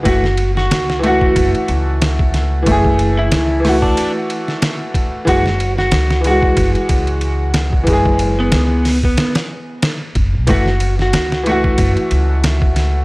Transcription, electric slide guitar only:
X:1
M:4/4
L:1/16
Q:"Swing 16ths" 1/4=92
K:F#m
V:1 name="Electric slide guitar"
F3 F3 F3 z6 z | z3 E4 D2 z6 z | F3 F3 F3 z6 z | z3 B,4 B,2 z6 z |
F3 F3 F3 z6 z |]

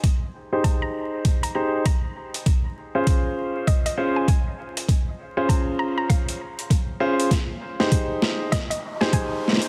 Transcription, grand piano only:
X:1
M:4/4
L:1/16
Q:"Swing 16ths" 1/4=99
K:Dblyd
V:1 name="Grand piano"
z3 [EGAc]6- [EGAc] [EGAc]2 z4 | z3 [DFAc]6- [DFAc] [DFAc]2 z4 | z3 [DFAc]6- [DFAc] z4 [DFAc]2 | z3 [EGAc]4- [EGAc] z3 [EGAc]4- [EGAc] |]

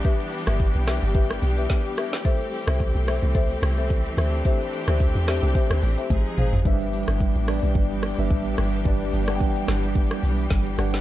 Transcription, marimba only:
X:1
M:4/4
L:1/16
Q:"Swing 16ths" 1/4=109
K:G
V:1 name="Marimba"
[GBe]3 [GBe] z2 [GBe] z [GBe] z2 [GBe] z2 [GBe] z | [Ace]3 [Ace] z2 [Ace] z [Ace] z2 [Ace] z2 [Gce] z | [Gce]3 [Gce] z2 [Gce] z [Gce] z2 [Gce] z2 [_Ac=f] z | z16 |
z16 |]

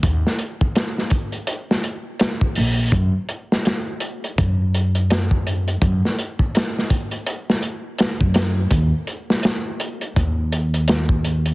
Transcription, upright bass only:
X:1
M:4/4
L:1/16
Q:"Swing 16ths" 1/4=83
K:Ebm
V:1 name="Upright bass" clef=bass
E,, z12 z B,,,2 | G,, z6 z G,,8 | G,, z12 G,,3 | E,, z6 z E,,8 |]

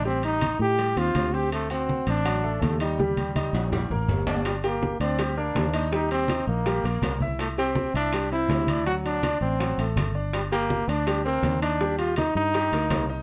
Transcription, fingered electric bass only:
X:1
M:4/4
L:1/8
Q:1/4=163
K:Gm
V:1 name="Fingered electric bass" clef=bass
A,,,3 A,,2 E,, D,,2- | D,,3 A,,,3 E,,2- | E,,3 B,,,2 A,,, G,,,2- | G,,,3 D,,3 E,,2- |
E,,3 B,,,2 B,,, C,,2- | C,,3 C,,3 D,,2- | D,,3 A,,,2 A,,, G,,,2- | G,,,3 D,,3 E,,2- |
E,,3 G,,2 D,, C,,2 |]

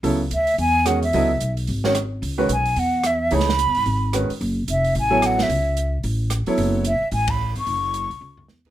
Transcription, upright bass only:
X:1
M:4/4
L:1/8
Q:"Swing" 1/4=220
K:C#m
V:1 name="Upright bass" clef=bass
C,,2 =D,,2 E,,4 | C,,2 B,,,2 G,,,4 | C,,2 B,,,2 E,,4 | C,,2- (3C,, E,, G,, G,,,3 z |
F,,,2 ^E,,,2 A,,,4 | C,,4 A,,,3 z | F,,,3 z A,,,3 G,,, | F,,,3 C,, C,,2 E,,2 |]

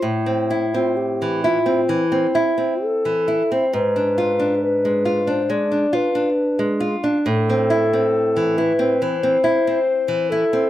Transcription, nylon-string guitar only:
X:1
M:4/4
L:1/16
Q:1/4=68
K:Am
V:1 name="Nylon-string guitar"
A,, C E C2 E, E C E, C E C2 E, E C | ^G,, D ^E D2 ^G, E D G, D E D2 G, E D | A,, C E C2 E, E C E, C E C2 E, E C |]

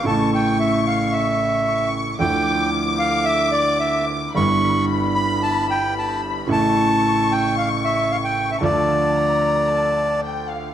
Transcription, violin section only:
X:1
M:4/4
L:1/8
Q:1/4=112
K:Dm
V:1 name="Violin section"
^c'6 c'2 | d'8 | =b8 | ^c'8 |
a2 b2 a2 g f |]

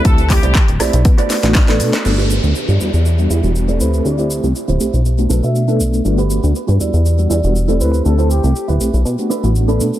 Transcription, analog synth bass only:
X:1
M:4/4
L:1/16
Q:"Swing 16ths" 1/4=120
K:G
V:1 name="Analog synth bass" clef=bass
D,,3 C,, z D,,, B,,, B,,, B,, z2 A,,,3 B,, z | G,,,3 D,, z G,, E,, E,,3 E,, E,,,3 D,,2 | D,,3 C,, z D,,, B,,, B,,,3 B,,, B,,3 B,,,2 | G,,,3 D,, z G,, E,, E,,3 E,, E,,,3 D,,2 |
D,,3 C,, z D,,, B,,, B,,, B,, z2 A,,,3 B,, z |]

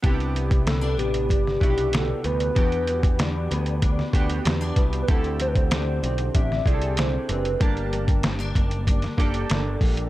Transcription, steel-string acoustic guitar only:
X:1
M:4/4
L:1/16
Q:1/4=95
K:Clyd
V:1 name="Steel-string acoustic guitar"
[C,G]2 B,2 C D B,2 D2 G2 D2 B,2 | [E,G]2 B,2 D2 B,2 D2 G2 C D B,2 | [D,G]2 C2 D2 C2 D2 G2 D2 C2 | G,2 _B,2 C D B,2 D2 A2 D2 B,2 |]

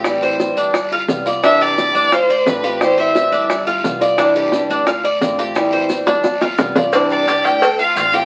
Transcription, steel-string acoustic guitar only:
X:1
M:4/4
L:1/8
Q:1/4=175
K:C
V:1 name="Steel-string acoustic guitar"
[E,G,CE]2 [E,G,CE]2 z2 [G,B,F] [B,F] | [C,E,G,DE]2 [E,G,DE]2 z2 [D,A,CF] [A,CF] | [E,G,CE]2 [E,G,CE]2 z2 [G,B,F] [B,F] | [C,E,G,DE]2 [E,G,DE]2 z2 [D,A,CF] [A,CF] |
[E,G,CE]2 [E,G,CE]2 z2 [G,B,F] [B,F] | [C,E,G,DE]2 [E,G,DE]2 z2 [D,A,CF] [A,CF] |]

